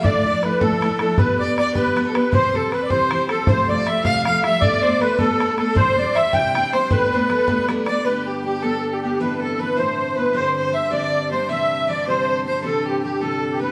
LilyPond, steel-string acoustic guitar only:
\new Staff \with { instrumentName = "Steel-string acoustic guitar" } { \time 6/8 \key g \mixolydian \tempo 4. = 105 <d, a, f a d' e'>8 <f a d' e'>8 <f a d' e'>8 <d, a, f a d' e'>8 <f a d' e'>8 <f a d' e'>8 | <g b d' g'>8 <b d' g'>8 <g b d' g'>8 <g b d' g'>8 <g b d' g'>8 <b d' g'>8 | <c e g c' g'>8 <g c' g'>8 <e g c' g'>8 <c e g c' g'>8 <e g c' g'>8 <g c' g'>8 | <f, c f g a f'>8 <f g a f'>8 <f g a f'>8 <f, c f g a f'>8 <f g a f'>8 <f g a f'>8 |
<g a b d'>8 <a b d'>8 <g a b d'>8 <g a b d'>8 <g a b d'>8 <a b d'>8 | <c e g c' d'>8 <g c' d'>8 <e g c' d'>8 <c e g c' d'>8 <e g c' d'>8 <g c' d'>8 | <g a b d'>8 <a b d'>8 <g a b d'>8 <g a b d'>8 <g a b d'>8 <a b d'>8 | <g b d' g'>4 <g b d' g'>8 <g b d' g'>4 <b d' g'>8 |
<a, e b c' e'>4 <e b c' e'>8 <a, e c' e'>4 <b c' e'>8 | <g, d g c' d' g'>4 <g c' d' g'>8 <g, d g c' d' g'>4 <g c' d' g'>8 | <c e g c' g'>4 <e g c' g'>8 <c e g c' g'>4 <g c' g'>8 | <c e g c' g'>4 <e g c' g'>8 <c e g c' g'>4 <g c' g'>8 | }